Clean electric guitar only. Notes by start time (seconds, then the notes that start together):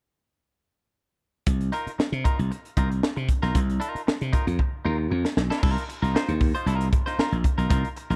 1.72 D#4 F4 A#4
1.98 muted clean electric guitar stroke
2.24 D#4 F4 A#4
2.39 muted clean electric guitar stroke
2.51 muted clean electric guitar stroke
2.77 D#4 F4 A#4
2.90 muted clean electric guitar stroke
3.03 muted clean electric guitar stroke
3.16 muted clean electric guitar stroke
3.42 D#4 F4 A#4
3.80 D#4 F4 A#4
4.07 muted clean electric guitar stroke
4.33 D#4 F4 A#4
4.47 muted clean electric guitar stroke
4.59 muted clean electric guitar stroke
4.85 D#4 F4 A#4
4.98 muted clean electric guitar stroke
5.11 muted clean electric guitar stroke
5.25 muted clean electric guitar stroke
5.50 D#4 F4 A#4
5.62 D#4 F4 A#4
5.89 muted clean electric guitar stroke
6.02 D#4 F4 A#4
6.15 D#4 F4 C5
6.41 muted clean electric guitar stroke
6.55 D#4 F4 C5
6.67 D#4 F4 A#4
6.92 muted clean electric guitar stroke
7.06 D#4 F4 C5
7.19 D#4 F4 A#4
7.45 muted clean electric guitar stroke
7.58 D#4 F4 A#4
7.70 D#4 F4 A#4
7.96 muted clean electric guitar stroke
8.10 D#4 F4 A#4